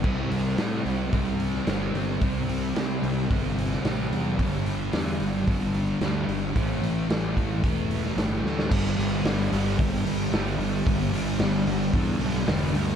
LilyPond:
<<
  \new Staff \with { instrumentName = "Distorted electric guitar" } { \clef bass \time 4/4 \key g \lydian \tempo 4 = 111 <c g c'>4 <c g c'>4 <c g c'>4 <c g c'>4 | <c g c'>4 <c g c'>4 <c g c'>4 <c g c'>4 | <g, d g>4 <g, d g>4 <g, d g>4 <g, d g>4 | <a, e a>4 <a, e a>4 <a, e a>4 <a, e a>4 |
<g, d g>8 <d g>8 <g, d g>8 <d g>8 <g, d g>8 <g, d g>8 <g, d g>8 <d g>8 | <g, d g>8 <d g>8 <g, d g>8 <d g>8 <g, d g>8 <g, d g>8 <g, d g>8 <d g>8 | }
  \new Staff \with { instrumentName = "Picked electric bass" } { \clef bass \time 4/4 \key g \lydian c,8 c,8 a,8 c,8 c,4 g,,8 g,,8 | c,8 c,8 c,8 c,8 g,,4 a,,8 e,8 | g,,8 g,,8 e,8 g,,8 g,,4 d,8 g,,8 | a,,8 a,,8 a,,8 a,,8 e,,4 g,,8 d,8 |
g,,8 g,,8 g,,8 g,,8 g,,8 g,,8 g,,8 g,,8 | g,,8 g,,8 g,,8 g,,8 e,8 b,,8 e,,8 d,8 | }
  \new DrumStaff \with { instrumentName = "Drums" } \drummode { \time 4/4 <cymc bd>8 hho8 <hho sn>8 hho8 <hho bd>8 hho16 sn16 <hho sn>8 hho8 | <hho bd>8 hho8 <hho sn>8 hho8 <hho bd>8 hho16 sn16 <hho sn>8 hho8 | <hho bd>8 hho8 <hho sn>8 hho8 <hho bd>8 hho8 <hho sn>8 hho8 | <hho bd>8 hho8 <hho sn>8 <hho bd>8 <hho bd>8 hho16 sn16 <hho sn>8 sn16 sn16 |
<cymc bd>8 hho8 <hho sn>8 hho8 <hho bd>8 hho8 <hho sn>8 hho8 | <hho bd>8 hho8 <hho sn>8 hho8 <hho bd>8 hho16 sn16 <hho sn>8 hho8 | }
>>